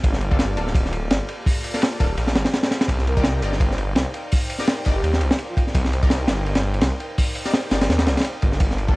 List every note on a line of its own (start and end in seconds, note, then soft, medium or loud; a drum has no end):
0.03 0.56 G1 loud
0.03 1.26 A#3 loud
0.03 1.26 F4 loud
0.03 1.26 G4 loud
0.03 1.26 A4 loud
0.03 1.26 D5 loud
0.03 kick loud
0.03 ride medium
0.13 snare medium
0.21 ride medium
0.31 0.43 A#3 medium
0.31 0.43 D4 medium
0.31 0.43 F4 medium
0.31 0.43 A4 medium
0.31 kick medium
0.39 snare loud
0.39 ride medium
0.57 1.09 D1 loud
0.57 0.70 A#3 medium
0.57 0.70 D4 medium
0.57 0.70 F4 medium
0.57 0.70 A4 medium
0.57 ride medium
0.67 snare soft
0.75 kick loud
0.75 ride medium
0.85 snare soft
0.93 ride medium
1.11 1.19 G1 loud
1.11 snare loud
1.11 ride medium
1.29 1.35 A#3 medium
1.29 1.35 F4 medium
1.29 1.35 G4 medium
1.29 1.35 A4 medium
1.29 1.35 D5 medium
1.29 ride medium
1.46 2.61 A#3 loud
1.46 2.61 F4 loud
1.46 2.61 G4 loud
1.46 2.61 A4 loud
1.46 2.61 D5 loud
1.46 kick loud
1.46 open hi-hat medium
1.64 ride medium
1.74 1.81 A#3 loud
1.74 1.81 D4 medium
1.74 1.81 F4 medium
1.74 1.81 A4 loud
1.74 snare soft
1.82 snare loud
1.82 ride medium
1.92 ride soft
2.00 2.16 D1 loud
2.00 2.08 A#3 medium
2.00 2.08 D4 medium
2.00 2.08 F4 medium
2.00 2.08 A4 loud
2.00 kick loud
2.00 ride medium
2.17 2.37 A#1 medium
2.17 ride medium
2.27 snare medium
2.35 2.44 G1 loud
2.35 snare loud
2.35 ride medium
2.45 snare loud
2.45 ride medium
2.53 snare loud
2.53 ride medium
2.63 2.87 A#3 medium
2.63 2.87 F4 medium
2.63 2.87 G4 medium
2.63 2.87 A4 medium
2.63 2.87 D5 loud
2.63 snare loud
2.63 ride medium
2.71 snare loud
2.71 ride medium
2.81 snare loud
2.81 ride medium
2.88 3.41 C2 loud
2.88 4.12 D#4 loud
2.88 4.12 A#4 loud
2.88 4.12 C5 loud
2.88 4.12 D5 loud
2.88 4.12 G5 loud
2.88 kick loud
2.88 ride medium
2.98 snare soft
3.07 3.13 A#4 medium
3.07 ride medium
3.17 3.28 D#4 medium
3.17 3.28 G4 medium
3.17 3.22 A#4 medium
3.17 3.28 A#4 medium
3.17 3.28 D5 medium
3.17 kick loud
3.24 snare loud
3.24 ride medium
3.42 3.95 G1 loud
3.42 3.55 D#4 medium
3.42 3.55 G4 medium
3.42 3.55 A#4 medium
3.42 3.55 D5 medium
3.42 ride medium
3.53 snare soft
3.60 kick loud
3.60 ride medium
3.71 snare soft
3.78 ride medium
3.96 4.05 C2 loud
3.96 snare loud
3.96 ride medium
4.14 4.20 D#4 medium
4.14 4.20 A#4 medium
4.14 4.20 C5 medium
4.14 4.20 D5 medium
4.14 4.20 G5 medium
4.14 ride medium
4.32 5.55 D#4 loud
4.32 5.55 A#4 loud
4.32 5.55 C5 loud
4.32 5.55 D5 loud
4.32 5.55 G5 loud
4.32 kick loud
4.32 open hi-hat medium
4.50 ride medium
4.58 4.66 D#4 medium
4.58 4.66 G4 medium
4.58 4.66 A#4 medium
4.58 4.66 D5 loud
4.58 snare soft
4.67 snare loud
4.67 ride medium
4.77 ride soft
4.85 5.02 G1 loud
4.85 4.94 D#4 medium
4.85 4.94 G4 medium
4.85 4.94 A#4 medium
4.85 4.94 D5 loud
4.85 kick medium
4.85 ride medium
4.95 5.16 G4 medium
5.03 5.23 D#2 medium
5.03 ride medium
5.13 snare medium
5.21 5.30 C2 loud
5.21 ride medium
5.31 snare loud
5.39 ride medium
5.49 5.54 F4 medium
5.57 5.63 D#4 medium
5.57 5.63 F4 medium
5.57 5.63 A#4 medium
5.57 5.63 C5 medium
5.57 5.63 D5 medium
5.57 5.63 G5 medium
5.57 kick medium
5.57 ride medium
5.67 snare soft
5.75 6.27 C2 loud
5.75 6.98 D#4 loud
5.75 6.98 A#4 loud
5.75 6.98 C5 loud
5.75 6.98 D5 loud
5.75 6.98 G5 loud
5.75 kick loud
5.75 ride loud
5.85 snare medium
5.93 ride medium
6.02 6.14 D#4 medium
6.02 6.14 G4 medium
6.02 6.14 A#4 medium
6.02 6.14 D5 medium
6.02 kick loud
6.10 snare loud
6.10 ride medium
6.28 6.81 G1 loud
6.28 snare loud
6.28 ride medium
6.46 ride medium
6.55 snare loud
6.55 ride medium
6.74 ride medium
6.81 6.91 C2 loud
6.81 snare loud
6.81 ride medium
7.00 7.06 D#4 medium
7.00 7.06 A#4 medium
7.00 7.06 C5 medium
7.00 7.06 D5 medium
7.00 7.06 G5 medium
7.00 ride medium
7.18 8.33 D#4 loud
7.18 8.33 A#4 loud
7.18 8.33 C5 loud
7.18 8.33 D5 loud
7.18 8.33 G5 loud
7.18 kick loud
7.18 open hi-hat medium
7.35 ride medium
7.45 7.52 D#4 medium
7.45 7.52 G4 medium
7.45 7.52 A#4 medium
7.45 7.52 D5 loud
7.45 snare soft
7.54 snare loud
7.54 ride medium
7.63 ride soft
7.71 7.88 G1 loud
7.71 7.80 D#4 medium
7.71 7.80 G4 medium
7.71 7.80 A#4 medium
7.71 7.80 D5 loud
7.71 snare loud
7.71 ride medium
7.81 snare loud
7.81 ride medium
7.89 8.09 D#2 loud
7.89 snare loud
7.89 ride medium
7.99 snare loud
7.99 ride medium
8.06 8.16 C2 loud
8.06 snare loud
8.06 ride medium
8.17 snare medium
8.17 ride medium
8.20 snare medium
8.20 ride medium
8.24 ride medium
8.35 8.59 D#4 medium
8.35 8.59 A#4 medium
8.35 8.59 C5 medium
8.35 8.59 D5 medium
8.35 8.59 G5 loud
8.42 8.59 G1 medium
8.42 kick loud
8.42 ride medium
8.52 snare soft
8.60 8.96 G1 loud
8.60 8.96 A#3 loud
8.60 8.96 F4 loud
8.60 8.96 G4 loud
8.60 8.96 A4 loud
8.60 8.96 D5 loud
8.60 kick loud
8.60 ride medium
8.71 snare soft
8.78 ride medium
8.88 8.96 A#3 medium
8.88 8.96 D4 medium
8.88 8.96 F4 medium
8.88 8.96 A4 medium
8.88 kick loud